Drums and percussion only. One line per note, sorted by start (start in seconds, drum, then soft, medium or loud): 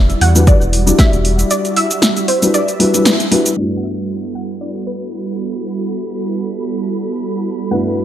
0.10 closed hi-hat soft
0.10 cabasa soft
0.21 open hi-hat loud
0.36 open hi-hat medium
0.36 cabasa medium
0.47 kick loud
0.47 closed hi-hat medium
0.47 cabasa medium
0.61 cabasa soft
0.73 open hi-hat loud
0.87 closed hi-hat medium
0.87 cabasa medium
0.99 kick loud
0.99 snare loud
0.99 closed hi-hat medium
0.99 cabasa medium
1.13 closed hi-hat soft
1.13 cabasa soft
1.25 open hi-hat loud
1.39 closed hi-hat medium
1.39 cabasa medium
1.51 closed hi-hat medium
1.51 cabasa medium
1.65 closed hi-hat soft
1.65 cabasa soft
1.76 open hi-hat loud
1.91 closed hi-hat medium
1.91 cabasa medium
2.02 snare loud
2.02 closed hi-hat medium
2.02 cabasa medium
2.17 closed hi-hat soft
2.17 cabasa soft
2.28 open hi-hat loud
2.42 open hi-hat medium
2.42 cabasa medium
2.54 closed hi-hat medium
2.54 cabasa medium
2.68 closed hi-hat soft
2.68 cabasa soft
2.80 open hi-hat loud
2.94 closed hi-hat medium
2.94 cabasa medium
3.05 snare loud
3.05 closed hi-hat medium
3.05 cabasa medium
3.20 closed hi-hat soft
3.20 cabasa soft
3.32 open hi-hat loud
3.46 closed hi-hat medium
3.46 cabasa medium